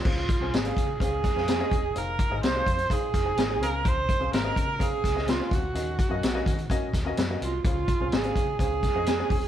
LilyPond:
<<
  \new Staff \with { instrumentName = "Upright piano" } { \time 4/4 \key des \major \tempo 4 = 126 <des' aes' c'' f''>8 r16 <des' aes' c'' aes''>16 r16 <des' aes' c'' f''>8 r16 <des' aes' c'' f''>8 r16 <des' aes' c'' f''>16 r16 <des' aes' c'' ees''>8 r16 | <ees' aes' c'' f''>8 r16 <ees' aes' c'' ees''>16 r16 <ees' aes' c'' f''>8 r16 <ees' aes' c'' f''>8 r16 <ees' aes' c'' aes''>16 r16 <ees' aes' c'' aes''>16 <des' aes' c'' f''>8~ | <des' aes' c'' f''>8 r16 <des' aes' c'' f''>16 r16 <des' aes' c'' ees''>8 r16 <des' aes' c'' f''>8 r16 <des' aes' c'' ees''>16 r16 <des' aes' c'' f''>8 r16 | <des' ges' bes' ees''>8 r16 <des' ges' bes' ees''>16 r16 <des' ges' bes' ees''>8 r16 <des' ges' bes' ees''>8 r16 <des' ges' bes' ees''>16 r16 <des' ges' bes' ees''>8 r16 |
<des' aes' c'' f''>8 r16 <des' aes' c'' f''>16 r16 <des' aes' c'' f''>8 r16 <des' aes' c'' f''>8 r16 <des' aes' c'' ees''>16 r16 <des' aes' c'' aes''>8 r16 | }
  \new Staff \with { instrumentName = "Upright piano" } { \clef bass \time 4/4 \key des \major des4. r2 r8 | r2. r8 des8~ | des4 r2. | ees4. r2 r8 |
des4. r2 r8 | }
  \new Staff \with { instrumentName = "Viola" } { \time 4/4 \key des \major f'4 aes'4 aes'2 | bes'4 c''4 aes'4. bes'8 | c''4 bes'4 aes'4 f'8 ges'8~ | ges'2~ ges'8 r4 f'8 |
f'4 aes'4 aes'2 | }
  \new Staff \with { instrumentName = "Fingered electric bass" } { \clef bass \time 4/4 \key des \major des,8. c,16 aes,,8 des8 des,8. f,8. fes,,8 | f,,8. aes,,16 c,8 f,8 r8 f,,8 aes,,8 des,8~ | des,8. c,16 aes,,8 des4 des,4 d,8 | ees,8. ges,16 bes,,8 ees8 r8 ees,8 ges,8 c,8 |
des,8. c,16 aes,,8 des8 des,8. f,8. fes,,8 | }
  \new DrumStaff \with { instrumentName = "Drums" } \drummode { \time 4/4 <cymc bd>8 <hh bd>8 <hh sn>16 hh16 <hh bd>8 <hh bd>8 <hh bd sn>16 sn16 <hh sn>8 <hh bd>8 | hh8 <hh bd>8 <hh sn>8 <hh bd>16 hh16 <hh bd>8 <hh bd sn>8 <hh sn>8 hh8 | <hh bd>8 <hh bd>8 <hh sn>8 <hh bd>8 <hh bd>8 <hh bd sn>16 sn16 <hh sn>8 <hh bd>8 | hh8 <hh bd>8 <hh sn>8 <hh bd>16 hh16 <hh bd>8 <hh bd sn>8 <hh sn>8 hh8 |
<hh bd>8 <hh bd>8 <hh sn>16 hh16 <hh bd>8 <hh bd>8 <hh bd sn>8 <hh sn>8 <hho bd>8 | }
>>